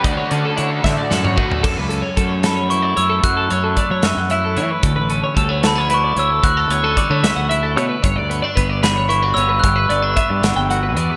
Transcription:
<<
  \new Staff \with { instrumentName = "Glockenspiel" } { \time 6/8 \key fis \phrygian \tempo 4. = 75 r2. | r4. b''8 cis'''8 e'''8 | fis'''2~ fis'''8 r8 | r4. b''8 cis'''8 e'''8 |
fis'''2~ fis'''8 r8 | r4. b''8 cis'''8 e'''8 | fis'''2~ fis'''8 r8 | }
  \new Staff \with { instrumentName = "Clean electric guitar" } { \time 6/8 \key fis \phrygian d''16 cis''16 d''16 a'16 cis''16 a'16 e''16 d''16 a'16 cis''16 b'16 a'16 | a'16 b'16 a'16 cis''16 a'16 cis''16 a'16 cis''16 b'16 d''16 cis''16 a'16 | fis'16 a'16 cis''16 a'16 d''16 cis''16 e''16 fis''16 e''16 a'16 cis''16 b'16 | a'16 b'16 a'16 cis''16 a'16 cis''16 a'16 cis''16 b'16 d''16 cis''16 a'16 |
fis'16 a'16 cis''16 a'16 d''16 cis''16 e''16 fis''16 e''16 a'16 cis''16 b'16 | cis''16 d''16 b'16 d''16 b'16 d''16 b'16 cis''16 b'16 d''16 cis''16 b'16 | g'16 b'16 d''16 b'16 e''16 d''16 fis''16 g''16 fis''16 b'16 d''16 b'16 | }
  \new Staff \with { instrumentName = "Overdriven electric guitar" } { \time 6/8 \key fis \phrygian <d a d' fis'>2~ <d a d' fis'>8 <d a d' fis'>8 | r2. | r2. | r2. |
r2. | r2. | r2. | }
  \new Staff \with { instrumentName = "Clean electric guitar" } { \time 6/8 \key fis \phrygian << { r8 cis'8 e'16 r8. fis'8 fis'8 | r8 cis'8 a8 cis'8 e'8 a8 | r8 cis'8 a8 cis'8 e'8 a8 | r8 cis'8 g16 a16 b16 cis'16 e'8 a8 |
r8 b16 cis'16 g16 a16 cis'8 e'8 a8 | r8 b16 d'16 b8 d'8 e'16 fis'16 b8 | r8 b16 d'16 b8 d'8 fis'8 b8 | } \\ { d4. a,4. | fis,2. | fis,2. | d2. |
d2. | g,2. | g,2. | } >> }
  \new Staff \with { instrumentName = "Fingered electric bass" } { \clef bass \time 6/8 \key fis \phrygian d,16 r16 d16 r16 d8 d16 r16 fis,8 r8 | fis,16 cis,8 r16 fis,4. fis,8 | fis,8 fis,8 r16 fis16 fis,16 fis,8. e16 r16 | d,16 a,,8 r16 d,4. d,8 |
d,8 d,8 r16 d16 d,16 d,8. b,16 r16 | g,,16 d,8 r16 g,,4. g,,8 | g,,8 g,,8 r16 g,16 g,,16 g,,8. e,16 r16 | }
  \new DrumStaff \with { instrumentName = "Drums" } \drummode { \time 6/8 <hh bd>8 hh8 hh8 <bd sn>8 sn16 toml16 bd16 tomfh16 | <cymc bd>8 hh8 <hh bd>8 <hh sn>8 hh8 hh8 | <hh bd>8 hh8 <hh bd>8 <hh sn>8 hh8 hh8 | <hh bd>8 hh8 <hh bd>8 <hh sn>8 hh8 hh8 |
<hh bd>8 hh8 <hh bd>8 <hh sn>8 hh8 hh8 | <hh bd>8 hh8 <hh bd>8 <hh sn>8 hh8 hh8 | <hh bd>8 hh8 <hh bd>8 <hh sn>8 hh8 hh8 | }
>>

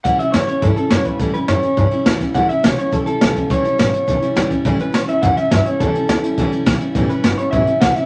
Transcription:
<<
  \new Staff \with { instrumentName = "Clean electric guitar" } { \time 4/4 \key a \mixolydian \tempo 4 = 209 fis''8 e''8 cis''8 cis''8 a'8 a'8 cis''8 b'8 | a'8 b'8 cis''2 r4 | fis''8 e''8 cis''8 cis''8 a'8 a'4. | cis''4 cis''2~ cis''8 r8 |
r8 b'8 cis''8 e''8 fis''8 e''8 e''8 cis''8 | a'2. r4 | r8 b'4 cis''8 e''4 fis''8 e''8 | }
  \new Staff \with { instrumentName = "Steel-string acoustic guitar" } { \time 4/4 \key a \mixolydian <a, e g cis' e'>8 <g cis' e'>8 <a, e g cis' e'>8 <g cis' e'>8 <e g cis' e'>8 <g cis' e'>8 <a, e g cis' e'>8 <g cis' e'>8 | <a, e g cis' e'>8 <g cis' e'>8 <a, e g cis' e'>8 <g cis' e'>8 <e g cis' e'>8 <g cis' e'>8 <a, e g cis' e'>8 <g cis' e'>8 | <a, e g cis' e'>8 <g cis' e'>8 <a, e g cis' e'>8 <g cis' e'>8 <e g cis' e'>8 <g cis' e'>8 <a, e g cis' e'>8 <g cis' e'>8 | <a, e g cis' e'>8 <g cis' e'>8 <a, e g cis' e'>8 <g cis' e'>8 <e g cis' e'>8 <g cis' e'>8 <a, e g cis' e'>8 <g cis' e'>8 |
<a, e g cis' e'>8 <g cis' e'>8 <e g cis' e'>8 <g cis' e'>8 <a, e g cis' e'>8 <g cis' e'>8 <e g cis' e'>8 <g cis' e'>8 | <a, e g cis' e'>8 <g cis' e'>8 <e g cis' e'>8 <g cis' e'>8 <a, e g cis' e'>8 <g cis' e'>8 <e g cis' e'>8 <g cis' e'>8 | <a, e g cis' e'>8 <g cis' e'>8 <e g cis' e'>8 <g cis' e'>8 <a, e g cis' e'>8 <g cis' e'>8 <e g cis' e'>8 <g cis' e'>8 | }
  \new Staff \with { instrumentName = "Upright bass" } { \clef bass \time 4/4 \key a \mixolydian a,8 r8 e,8 r8 g,8 r8 fis,8 r8 | e,8 r8 fis,8 r8 g,8 r8 d,8 r8 | cis,8 r8 b,,8 r8 a,,8 r8 b,,8 r8 | cis,8 r8 a,,8 r8 b,,8 r8 cis,8 r8 |
cis8 r8 a,8 r8 fis,8 r8 g,8 r8 | e,8 r8 d,8 r8 cis,8 r8 b,,8 r8 | a,,8 r8 g,,8 r8 a,,8 r8 b,,8 r8 | }
  \new DrumStaff \with { instrumentName = "Drums" } \drummode { \time 4/4 <hh bd>8 hh8 <hh sn>8 hh8 <hh bd>8 hh8 <hh sn>8 <hh bd>8 | <hh bd>8 hh8 <hh sn>8 hh8 <hh bd>8 hh8 <hh sn>8 <hh bd sn>8 | <hh bd>8 hh8 <hh sn>8 hh8 <hh bd>8 hh8 <hh sn>8 <hh bd sn>8 | <hh bd>8 hh8 <hh sn>8 hh8 <hh bd>8 hh8 <hh sn>8 <hh bd sn>8 |
<hh bd>8 hh8 <hh sn>8 hh8 <hh bd>8 hh8 <hh bd sn>8 hh8 | <hh bd>8 hh8 <hh sn>8 hh8 <hh bd>8 hh8 <hh bd sn>8 hh8 | <hh bd>8 hh8 <hh sn>8 hh8 <hh bd>8 hh8 <hh bd sn>8 <hh sn>8 | }
>>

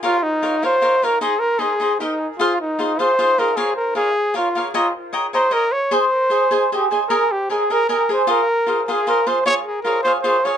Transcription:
<<
  \new Staff \with { instrumentName = "Cavaquinho" } { \time 3/4 \key aes \major \tempo 4 = 153 <f' bes' des'' f''>8 r8 <f' bes' des'' f''>8 <f' bes' des'' f''>8 <f' bes' des'' f''>8 <f' bes' des'' f''>8 | <ees' aes' c'' ees''>8 r8 <ees' aes' c'' ees''>8 <ees' aes' c'' ees''>8 <g' bes' ees'' g''>8 r8 | <f' aes' c'' f''>8 r8 <f' aes' c'' f''>8 <f' aes' c'' f''>8 <f' aes' c'' f''>8 <f' aes' c'' f''>8 | <f' bes' des'' f''>8 r8 <f' bes' des'' f''>8 r8 <f' bes' des'' f''>8 <f' bes' des'' f''>8 |
<des'' ees'' g'' bes''>8 r8 <des'' ees'' g'' bes''>8 <des'' ees'' g'' bes''>8 <des'' ees'' g'' bes''>8 r8 | <aes' c'' ees'' aes''>8 r8 <aes' c'' ees'' aes''>8 <aes' c'' ees'' aes''>8 <aes' c'' ees'' aes''>8 <aes' c'' ees'' aes''>8 | <aes' bes' ees'' aes''>8 r8 <aes' bes' ees'' aes''>8 <aes' bes' ees'' aes''>8 <aes' bes' ees'' aes''>8 <aes' bes' ees'' aes''>8 | <f' aes' c'' f''>8 r8 <f' aes' c'' f''>8 <f' aes' c'' f''>8 <f' aes' c'' f''>8 <f' aes' c'' f''>8 |
<f' aes' des'' f''>8 r8 <f' aes' des'' f''>8 <f' aes' des'' f''>8 <f' aes' des'' f''>8 <f' aes' des'' f''>8 | }
  \new Staff \with { instrumentName = "Trumpet" } { \time 3/4 \key aes \major f'8 ees'4 c''4 bes'8 | aes'8 bes'8 aes'4 ees'8. r16 | f'8 ees'4 c''4 bes'8 | aes'8 bes'8 aes'4 f'8. r16 |
f'8 r4 c''8 bes'8 des''8 | c''2 g'8 aes'8 | bes'8 g'8 aes'8 bes'8 bes'8 c''8 | bes'4~ bes'16. bes'32 aes'8 bes'8 c''8 |
des''8 aes'8 bes'8 c''8 c''8 des''8 | }
>>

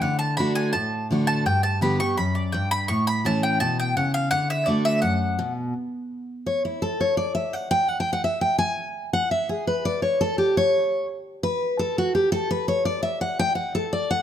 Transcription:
<<
  \new Staff \with { instrumentName = "Mandolin" } { \time 4/4 \key d \major \tempo 4 = 168 fis''8 a''8 b''8 gis''8 a''4 r8 a''8 | g''8 a''8 b''8 cis'''8 b''8 d''8 g''8 b''8 | cis'''8 b''8 a''8 g''8 a''8 g''8 fis''8 f''8 | fis''8 e''8 d''8 e''8 fis''4. r8 |
r1 | r1 | r1 | r1 |
r1 | r1 | }
  \new Staff \with { instrumentName = "Steel-string acoustic guitar" } { \time 4/4 \key d \major << { r4 <d a d' fis'>4 r4 <d a d' fis'>4 | r4 <d g b g'>8 <b g'>8 r2 | r4 <e a cis' e'>4 r2 | r4 <d a d' fis'>4 r2 |
r2 cis''8 e'8 a'8 cis''8 | d''8 e''8 fis''8 g''8 \tuplet 3/2 { fis''8 g''8 fis''8 } e''8 g''8 | gis''4. fis''8 e''8 gis'8 b'8 d''8 | cis''8 a'8 g'8 cis''4. r4 |
b'4 a'8 fis'8 g'8 a'8 b'8 cis''8 | d''8 e''8 fis''8 g''8 fis''8 a'8 d''8 fis''8 | } \\ { d2 a,2 | g,2 fis,4 g,4 | a,2 b,4 cis4 | d2 fis,4 b,4 |
r1 | r1 | r1 | r1 |
r1 | r1 | } >> }
>>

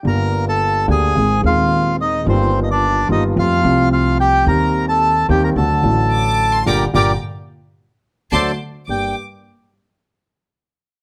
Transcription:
<<
  \new Staff \with { instrumentName = "Violin section" } { \time 4/4 \key g \minor \tempo 4 = 109 r1 | r1 | r2. d'''8. c'''16 | <g'' bes'' d'''>8 <g'' bes'' d'''>8 r2 <a'' c''' d'''>8 r8 |
d'''8 r2. r8 | }
  \new Staff \with { instrumentName = "Bandoneon" } { \time 4/4 \key g \minor << { bes''8. a''8. aes''4 f''4 ees''8 | c''8~ c''32 ees''32 d''8. ees''8 f''4 f''8 g''8 | bes''8. a''8. g''16 bes''16 a''2 | <g' bes' d''>8 <g' bes' d''>8 r2 <a' c'' d''>8 r8 |
g''8 r2. r8 | } \\ { bes'8. a'8. aes'4 f'4 ees'8 | c'8 r16 d'8. ees'8 f'4 f'8 g'8 | bes'8. a'8. g'16 bes'16 a'2 | r1 |
r1 | } >> }
  \new Staff \with { instrumentName = "Grand piano" } { \clef bass \time 4/4 \key g \minor <g,, g, d g bes g'>4. <d, d a bes g'>8 <aes,, aes, ees aes c' aes'>8 <ees,, ees, ees aes c' aes'>4. | <g,, g, ees g bes f'>4. <g,, g, ees g bes f'>8 <f, f a c' g'>8 <c, c f a c' g'>4. | <ees, ees g c' g'>4. <ees, ees g c' g'>8 <d, d fis a fis'>8 <a,, a, d fis a fis'>4. | <bes, d g>8 <bes, d g>8 r2 <d fis a>8 r8 |
<g, bes d' g'>8 r2. r8 | }
  \new Staff \with { instrumentName = "Upright bass" } { \clef bass \time 4/4 \key g \minor g,,4. d,8 aes,,8 ees,4. | g,,4. g,,8 f,8 c,4. | ees,4. ees,8 d,8 a,,4. | g,,8 g,,8 r2 d,8 r8 |
g,,8 r2. r8 | }
>>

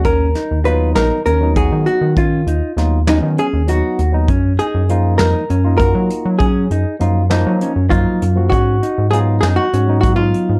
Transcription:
<<
  \new Staff \with { instrumentName = "Hollow-body jazz guitar" } { \time 7/8 \key ces \lydian \tempo 4 = 99 ais'4 b'8 ais'8 ais'8 aes'8 fis'8 | f'4 r8 dis'8 aes'8 fis'8. r16 | r8 aes'4 bes'4 bes'4 | aes'4 r4. f'4 |
ges'4 aes'8 aes'16 ges'8. ges'16 f'8. | }
  \new Staff \with { instrumentName = "Clean electric guitar" } { \time 7/8 \key ces \lydian des'8 dis'8 f'8 dis'8 des'8 fis'4 | des'8 dis'8 f'8 dis'8 des'8 fis'4 | des'8 ees'8 f'8 ees'8 des'8 ges'4 | des'8 ees'8 f'8 ees'8 des'8 ges4 |
des'8 ees'8 f'8 ees'8 des'8 ges4 | }
  \new Staff \with { instrumentName = "Tine electric piano" } { \time 7/8 \key ces \lydian r4 <fis b dis'>8. r8 <fis b dis'>4~ <fis b dis'>16 | r4 <fis b dis'>16 r16 <fis b des'>8. r16 <fis b dis'>8 r16 <fis b dis'>16 | r4 <f bes ees'>8. r8 <bes ees' f'>4~ <bes ees' f'>16 | r4 <f bes ees'>16 r16 <f bes ees'>8. r16 <f bes ees'>8 r16 <f bes ges'>16 |
r4 <ges ces' ees'>8. r8 <ges ces' ees'>4~ <ges ces' ees'>16 | }
  \new Staff \with { instrumentName = "Analog synth bass" } { \clef bass \time 7/8 \key ces \lydian dis,8 r16 dis,8. ais,,16 r16 dis,8. dis16 r16 dis16~ | dis8 dis,16 r16 dis,8. dis16 r16 dis,8 r16 dis,8 | ges,8 r16 ges,8. f,16 r16 ges,8. ges16 r16 ges16~ | ges8 ges,16 r16 ges,8. ges16 r16 ges,8 r16 ges,8 |
aes,8 r16 aes,8. ges,16 r16 aes,8. aes,16 r16 aes,16 | }
  \new DrumStaff \with { instrumentName = "Drums" } \drummode { \time 7/8 <hh bd>8 <hh sn>8 hh8 <hh sn>8 hh8 <hh bd>8 hh8 | <hh bd>8 hh8 <hh sn>8 <hh sn>8 hh8 hh8 hh8 | <hh bd>8 hh8 hh8 <hh sn>8 hh8 <hh bd>8 hh8 | <hh bd>8 hh8 hh8 <hh sn>8 hh8 <hh bd>8 hh8 |
<hh bd>8 hh8 hh8 <hh sn>8 hh8 <hh bd>8 hh8 | }
>>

